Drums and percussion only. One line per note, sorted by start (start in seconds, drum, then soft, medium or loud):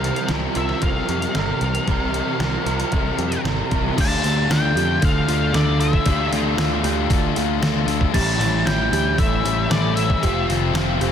0.04 closed hi-hat medium
0.16 closed hi-hat medium
0.28 snare loud
0.28 closed hi-hat medium
0.55 closed hi-hat medium
0.69 snare soft
0.82 kick loud
0.82 closed hi-hat medium
1.09 closed hi-hat medium
1.22 closed hi-hat medium
1.35 snare medium
1.35 closed hi-hat medium
1.61 closed hi-hat medium
1.75 closed hi-hat medium
1.88 kick loud
1.88 closed hi-hat medium
2.14 closed hi-hat medium
2.40 snare loud
2.40 closed hi-hat medium
2.66 closed hi-hat medium
2.80 closed hi-hat medium
2.92 kick loud
2.92 closed hi-hat medium
3.19 closed hi-hat medium
3.32 closed hi-hat medium
3.45 snare medium
3.45 closed hi-hat medium
3.71 kick medium
3.71 closed hi-hat medium
3.98 kick loud
3.98 open hi-hat medium
3.98 crash loud
4.24 open hi-hat medium
4.51 snare loud
4.51 open hi-hat medium
4.77 open hi-hat medium
5.02 kick loud
5.02 open hi-hat medium
5.29 open hi-hat medium
5.54 snare loud
5.54 open hi-hat medium
5.81 open hi-hat medium
5.93 kick medium
6.06 kick loud
6.06 open hi-hat medium
6.33 snare soft
6.33 open hi-hat medium
6.58 snare loud
6.58 open hi-hat medium
6.84 open hi-hat medium
7.10 kick loud
7.10 open hi-hat medium
7.36 open hi-hat medium
7.63 snare loud
7.63 open hi-hat loud
7.88 open hi-hat medium
8.01 kick medium
8.14 kick loud
8.14 crash loud
8.41 snare soft
8.41 open hi-hat medium
8.67 snare loud
8.67 open hi-hat medium
8.93 open hi-hat medium
9.18 kick loud
9.18 open hi-hat medium
9.46 open hi-hat medium
9.71 snare loud
9.71 open hi-hat medium
9.97 open hi-hat medium
10.10 kick medium
10.23 kick medium
10.23 open hi-hat medium
10.50 snare soft
10.50 open hi-hat medium
10.75 snare loud
10.75 open hi-hat medium
11.01 open hi-hat medium